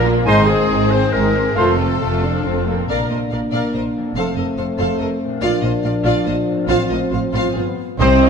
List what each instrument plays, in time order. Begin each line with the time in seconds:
Already playing: double bass section A#1, cello section A#2, harp A#2 F3 A#3 A#4 F5 A#5, violin section A#3
0.06 viola section A#3 F4, harp F4
0.17 harp A#3
0.25 double bass section G#1, cello section G#2, harp G#2, french horn section G#3 D#4, viola section G#3 D#4, violin section C4 D#4, clarinet D#4, trumpet C5, cor anglais G#5, flute section C6
0.38 harp D#3
0.47 harp C4, viola section C4 G#4, clarinet G#4, violin section G#4
0.59 harp G#4
0.69 double bass section G#1, cello section G#2, viola section G#3 D#4, harp D#5
0.80 harp C5
0.91 viola section C4 G#4, clarinet C5, violin section C5, harp G#5
1.02 harp D#6
1.12 double bass section G#1, cello section G#2, viola section G#3 D#4, violin section A#4, clarinet A#4, harp G#5
1.25 harp C5
1.35 viola section C4 G#4, harp D#5
1.46 harp G#4
1.56 double bass section F1, harp F2, cello section F2, french horn section F3 F4, violin section A3 A4, viola section A3 F4, clarinet A4, trumpet C5, cor anglais F5, flute section C6
1.68 harp C3
1.79 harp C4, viola section C4 A4
1.90 harp C5
2.01 double bass section F1, cello section F2, viola section A3 F4, violin section A3, harp F5
2.12 harp C5
2.22 viola section C4 A4, violin section D4, harp C6
2.33 harp F6
2.44 double bass section F1, cello section F2, viola section A3 F4, violin section C4, harp C6
2.54 harp C5
2.66 harp A#2 F5, violin section A#3, viola section C4 A4
2.74 harp D4 C5
2.79 harp A#4
2.84 french horn section A#3 D4, harp F5
2.88 double bass section A#1, cello section A#2, viola section A#4, violin section D5 F5
3.10 double bass section A#1, cello section A#2, viola section A#4, violin section C5 D#5
3.30 double bass section A#1, cello section A#2, viola section A#4, violin section D5 F5
3.52 double bass section A#1, cello section A#2, viola section A#4, violin section D5 F5
3.73 double bass section A#1, cello section A#2, viola section A#4, violin section C5 D#5
3.97 harp F2
4.02 harp C4
4.07 harp A4
4.11 cello section F2, french horn section A3 C4, harp F5
4.16 double bass section F1, viola section A4, violin section C5 F5
4.36 double bass section F1, cello section F2, viola section A4, violin section A#4 D#5
4.57 double bass section F1, cello section F2, viola section A4, violin section C5 F5
4.78 double bass section F1, cello section F2, viola section A4, violin section C5 F5
4.99 double bass section F1, cello section F2, viola section A4, violin section A#4 D#5
5.24 harp A#2
5.29 harp D4
5.33 harp F4
5.37 double bass section A#1, viola section F4, harp F5, violin section F5
5.42 cello section A#2, french horn section F3 D4, violin section D5
5.62 double bass section A#1, cello section A#2, viola section F4, violin section C5 D#5
5.84 double bass section A#1, cello section A#2, viola section F4, violin section D5 F5
6.04 double bass section A#1, cello section A#2, viola section F4, violin section D5 F5
6.25 double bass section A#1, cello section A#2, viola section F4, violin section C5 D#5
6.50 harp A2
6.55 harp C4
6.60 harp F4
6.64 cello section A2, viola section F4, harp F5
6.68 double bass section A1, french horn section C4, violin section C5 F5
6.89 double bass section A1, cello section A2, viola section F4, violin section A#4 D#5
7.11 double bass section A1, cello section A2, viola section F4, violin section C5 F5
7.33 double bass section A1, cello section A2, viola section F4, violin section C5 F5
7.38 harp G2
7.43 harp B3
7.47 harp F4
7.51 double bass section G1, violin section G#4, harp B4
7.56 cello section G2, french horn section B3, viola section F4, violin section C5
7.99 double bass section C2, tuba C2, harp C3, cello section C3, trumpet C4, french horn section C4, violin section C5, viola section C5 D#5, clarinet C5, cor anglais D#5, flute section G5
8.21 harp G4, viola section C5 D#5